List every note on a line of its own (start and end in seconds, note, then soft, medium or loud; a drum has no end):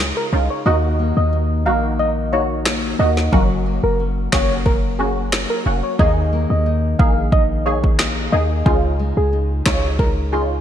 0.00 0.13 C#2 medium
0.00 0.66 C#3 medium
0.00 0.73 G#3 medium
0.00 0.31 D#4 medium
0.00 0.66 F4 medium
0.17 0.26 A#4 medium
0.32 0.49 C2 medium
0.32 0.63 C#4 medium
0.32 1.32 D#4 medium
0.32 0.63 D#4 medium
0.32 0.64 F4 medium
0.50 0.60 C#5 medium
0.66 1.13 D#2 loud
0.66 3.32 D#3 medium
0.66 1.58 A#3 loud
0.66 1.58 D#4 medium
0.66 1.59 F#4 loud
0.66 2.32 F#4 medium
0.66 0.77 D#5 loud
0.99 1.66 A#3 medium
1.17 1.67 D#2 loud
1.17 1.37 D#5 medium
1.33 1.98 D#4 medium
1.66 2.95 A#1 medium
1.66 1.97 A#3 medium
1.66 2.66 A#3 medium
1.66 1.97 D#4 medium
1.66 1.97 F#4 medium
1.66 1.86 F5 medium
1.99 2.98 D#4 medium
1.99 2.10 D#5 medium
2.32 2.54 A#3 medium
2.32 2.54 D#4 medium
2.32 3.33 F#4 medium
2.32 2.54 F#4 medium
2.32 2.43 C#5 medium
2.65 3.66 A#3 medium
2.65 finger snap medium
2.65 snare loud
2.99 3.30 D#2 medium
2.99 3.30 A#3 medium
2.99 3.30 D#4 medium
2.99 3.30 F#4 medium
2.99 3.10 D#5 medium
3.17 snare medium
3.32 3.80 F#1 loud
3.32 5.99 F#3 medium
3.32 4.25 A#3 medium
3.32 4.25 C#4 medium
3.32 4.25 F#4 loud
3.32 4.98 F#4 medium
3.32 3.43 A#4 loud
3.32 kick loud
3.66 4.32 A#3 medium
3.83 4.29 F#1 medium
3.83 4.04 A#4 medium
4.00 4.65 C#4 medium
4.32 5.46 F#1 loud
4.32 4.63 A#3 medium
4.32 5.32 A#3 medium
4.32 4.63 C#4 medium
4.32 4.64 F#4 medium
4.32 4.53 C#5 medium
4.32 finger snap medium
4.32 kick loud
4.32 snare loud
4.66 5.65 C#4 medium
4.66 4.77 A#4 medium
4.66 kick medium
4.99 5.20 A#3 medium
4.99 5.21 C#4 medium
4.99 5.99 F#4 medium
4.99 5.21 F#4 medium
4.99 5.10 G#4 medium
5.32 6.32 A#3 medium
5.32 finger snap medium
5.32 snare loud
5.50 5.59 A#4 medium
5.66 5.82 F1 medium
5.66 5.97 A#3 medium
5.66 5.97 C#4 medium
5.66 6.06 C#4 medium
5.66 5.97 F#4 medium
5.83 5.93 C#5 medium
5.99 6.46 D#2 loud
5.99 8.69 D#3 medium
5.99 6.92 A#3 medium
5.99 6.92 D#4 medium
5.99 6.92 G#4 loud
5.99 7.66 G#4 medium
5.99 6.10 D#5 loud
5.99 kick loud
6.33 6.98 A#3 medium
6.50 6.95 D#2 loud
6.50 6.70 D#5 medium
6.66 7.32 D#4 medium
6.99 8.29 A#1 loud
6.99 7.30 A#3 medium
6.99 7.98 A#3 medium
6.99 7.30 D#4 medium
6.99 7.30 G#4 medium
6.99 7.19 F5 medium
6.99 kick loud
7.32 8.32 D#4 medium
7.32 7.43 D#5 medium
7.32 kick medium
7.66 7.87 A#3 medium
7.66 7.87 D#4 medium
7.66 7.87 G#4 medium
7.66 8.66 G#4 medium
7.66 7.76 C#5 medium
7.84 kick medium
7.99 8.73 A#3 medium
7.99 finger snap medium
7.99 snare loud
8.32 8.63 D#2 medium
8.32 8.63 A#3 medium
8.32 8.63 D#4 medium
8.32 9.32 D#4 medium
8.32 8.64 G#4 medium
8.32 8.43 D#5 medium
8.66 9.13 C#2 loud
8.66 10.61 C#3 medium
8.66 9.58 C#4 medium
8.66 9.58 D#4 medium
8.66 9.59 F4 loud
8.66 10.31 F4 medium
8.66 8.76 G#4 loud
8.66 kick loud
8.99 9.65 G#3 medium
9.17 9.62 C#2 loud
9.17 9.37 G#4 medium
9.33 9.99 D#4 medium
9.66 10.61 C#2 medium
9.66 10.61 G#3 medium
9.66 9.97 C#4 medium
9.66 9.97 D#4 medium
9.66 9.97 F4 medium
9.66 9.86 C#5 medium
9.66 finger snap medium
9.66 kick loud
9.66 snare loud
9.99 10.61 D#4 medium
9.99 10.10 A#4 medium
9.99 kick medium
10.32 10.54 C#4 medium
10.32 10.54 D#4 medium
10.32 10.61 F4 medium
10.32 10.54 F4 medium
10.32 10.43 G#4 medium